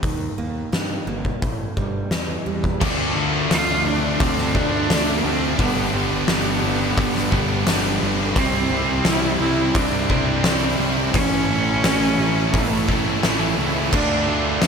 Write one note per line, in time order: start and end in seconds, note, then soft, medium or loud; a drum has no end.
0.03 0.28 D#2 medium
0.03 0.71 D#3 medium
0.03 kick medium
0.03 open hi-hat soft
0.38 0.63 D#2 medium
0.38 1.06 A#3 medium
0.72 0.97 G2 medium
0.72 1.42 D#3 medium
0.72 snare medium
0.72 open hi-hat soft
1.07 1.32 G1 medium
1.07 1.42 A#3 medium
1.25 kick medium
1.42 1.67 A1 medium
1.42 2.82 A2 medium
1.42 kick medium
1.42 open hi-hat soft
1.77 2.02 G1 medium
1.77 2.45 G3 medium
1.77 kick medium
2.11 2.36 E2 medium
2.11 2.81 E3 medium
2.11 snare loud
2.11 open hi-hat soft
2.46 2.71 E2 medium
2.46 2.81 G3 medium
2.64 kick medium
2.81 3.12 D2 medium
2.81 3.14 D3 medium
2.81 4.53 F3 loud
2.81 3.15 A3 loud
2.81 8.33 D4 medium
2.81 3.16 D4 loud
2.81 5.57 F4 medium
2.81 5.57 A4 medium
2.81 5.57 F5 medium
2.81 kick loud
2.81 crash loud
3.15 3.46 D2 medium
3.15 3.49 D3 medium
3.15 3.50 A3 loud
3.15 3.51 D4 loud
3.50 3.81 D2 loud
3.50 3.85 D3 medium
3.50 3.85 A3 medium
3.50 3.86 D4 medium
3.50 3.88 F4 loud
3.50 snare loud
3.50 open hi-hat medium
3.85 4.15 D2 medium
3.85 4.19 D3 medium
3.85 4.20 A3 loud
3.85 4.20 D4 medium
3.85 4.24 D4 loud
4.20 4.50 D2 loud
4.20 4.54 D3 loud
4.20 4.54 A3 loud
4.20 4.57 C4 medium
4.20 4.55 D4 loud
4.20 kick loud
4.20 open hi-hat medium
4.38 snare soft
4.55 4.85 D2 medium
4.55 4.88 D3 medium
4.55 4.88 F3 medium
4.55 4.88 A3 medium
4.55 5.19 D4 loud
4.55 4.90 D4 loud
4.55 kick medium
4.89 5.20 D2 loud
4.89 5.23 D3 medium
4.89 5.57 F3 medium
4.89 5.24 A3 medium
4.89 5.24 D4 loud
4.89 snare loud
4.89 open hi-hat medium
5.17 5.26 A#3 medium
5.24 5.54 D2 loud
5.24 5.57 D3 medium
5.24 5.57 A3 loud
5.24 5.59 C4 medium
5.24 5.58 D4 loud
5.58 5.89 G1 loud
5.58 5.92 G2 medium
5.58 5.93 D3 medium
5.58 5.93 G3 loud
5.58 5.92 B3 loud
5.58 7.31 B3 loud
5.58 7.30 D4 loud
5.58 11.10 G4 medium
5.58 8.34 B4 medium
5.58 11.11 G5 medium
5.58 kick loud
5.58 open hi-hat medium
5.93 6.24 G1 medium
5.93 6.26 G2 medium
5.93 6.27 D3 loud
5.93 6.28 G3 loud
5.93 7.97 B3 loud
6.27 6.58 G1 medium
6.27 6.60 G2 medium
6.27 6.61 D3 medium
6.27 6.63 G3 medium
6.27 snare loud
6.27 open hi-hat medium
6.62 6.93 G1 loud
6.62 6.95 G2 medium
6.62 6.95 D3 loud
6.62 6.96 G3 loud
6.97 7.28 G1 medium
6.97 7.29 G2 loud
6.97 7.30 D3 loud
6.97 7.31 G3 loud
6.97 kick loud
6.97 open hi-hat medium
7.15 snare soft
7.31 7.62 G1 loud
7.31 7.64 G2 medium
7.31 7.65 D3 medium
7.31 7.65 G3 loud
7.31 7.65 B3 medium
7.31 7.64 D4 loud
7.31 kick medium
7.35 7.64 G2 medium
7.66 7.97 G1 loud
7.66 7.98 G2 medium
7.66 7.99 D3 medium
7.66 7.99 G3 loud
7.66 8.35 B3 medium
7.66 8.35 D4 medium
7.66 snare loud
7.66 open hi-hat medium
8.00 8.32 G1 loud
8.00 8.33 G2 medium
8.00 8.33 D3 medium
8.00 8.34 G3 loud
8.34 8.66 C2 loud
8.34 8.68 C3 medium
8.34 8.69 G3 loud
8.34 9.07 C4 loud
8.34 8.69 C4 loud
8.34 13.89 E4 medium
8.34 10.08 E4 loud
8.34 11.12 C5 medium
8.34 kick loud
8.34 open hi-hat medium
8.70 9.01 C2 loud
8.70 9.04 C3 medium
8.70 9.04 G3 loud
8.70 9.05 C4 loud
9.05 9.36 C2 loud
9.05 9.39 C3 medium
9.05 9.40 G3 medium
9.05 9.40 C4 medium
9.05 9.39 E4 loud
9.05 snare loud
9.05 open hi-hat medium
9.39 9.70 C2 loud
9.39 9.73 C3 medium
9.39 9.74 G3 medium
9.39 9.75 C4 loud
9.39 9.77 E4 loud
9.74 10.05 C2 loud
9.74 10.08 C3 loud
9.74 10.09 G3 loud
9.74 10.09 C4 loud
9.74 10.80 D4 medium
9.74 kick loud
9.74 open hi-hat medium
10.09 10.40 C2 medium
10.09 10.43 C3 medium
10.09 10.44 G3 loud
10.09 10.43 C4 medium
10.09 10.42 E4 medium
10.09 kick medium
10.43 10.74 C2 loud
10.43 10.79 C3 medium
10.43 10.79 G3 medium
10.43 10.80 C4 loud
10.43 11.13 E4 medium
10.43 snare loud
10.43 open hi-hat medium
10.79 11.09 C2 medium
10.79 11.13 C3 medium
10.79 11.13 G3 loud
10.79 11.13 C4 loud
11.14 11.45 A1 loud
11.14 11.48 A2 medium
11.14 11.50 E3 loud
11.14 11.51 A3 loud
11.14 12.56 C#4 loud
11.14 12.87 C#4 loud
11.14 12.86 E4 loud
11.14 14.67 A4 medium
11.14 13.90 C#5 medium
11.14 14.67 A5 medium
11.14 kick loud
11.14 open hi-hat medium
11.49 11.79 A1 medium
11.49 11.83 A2 medium
11.49 11.84 E3 loud
11.49 11.85 A3 loud
11.84 12.14 A1 loud
11.84 12.18 A2 medium
11.84 12.18 E3 medium
11.84 12.20 A3 loud
11.84 snare loud
11.84 open hi-hat medium
12.19 12.49 A1 medium
12.19 12.52 A2 medium
12.19 12.52 E3 medium
12.19 12.53 A3 loud
12.53 12.84 A1 loud
12.53 12.87 A2 loud
12.53 12.88 E3 loud
12.53 12.88 A3 loud
12.53 13.24 A3 loud
12.53 kick loud
12.53 open hi-hat medium
12.87 13.19 A1 loud
12.87 13.22 A2 medium
12.87 13.22 E3 loud
12.87 13.23 A3 medium
12.87 13.21 C#4 medium
12.87 13.20 E4 medium
12.87 kick medium
13.23 13.54 A1 loud
13.23 13.56 A2 medium
13.23 13.56 E3 medium
13.23 13.56 A3 medium
13.23 13.91 C#4 medium
13.23 13.92 E4 medium
13.23 snare loud
13.23 open hi-hat medium
13.57 13.88 C#2 medium
13.57 13.90 A2 medium
13.57 13.90 E3 loud
13.57 13.90 A3 loud
13.92 14.23 D2 loud
13.92 14.26 D3 loud
13.92 14.27 A3 medium
13.92 14.28 D4 loud
13.92 14.59 D4 loud
13.92 14.67 F4 loud
13.92 14.67 F4 medium
13.92 14.67 D5 medium
13.92 kick loud
13.92 crash loud
14.27 14.58 D2 medium
14.27 14.61 D3 medium
14.27 14.61 A3 loud
14.27 14.63 D4 loud
14.62 14.67 D2 medium
14.62 14.67 D3 medium
14.62 14.67 A3 medium
14.62 14.67 D4 loud
14.62 snare loud
14.62 open hi-hat medium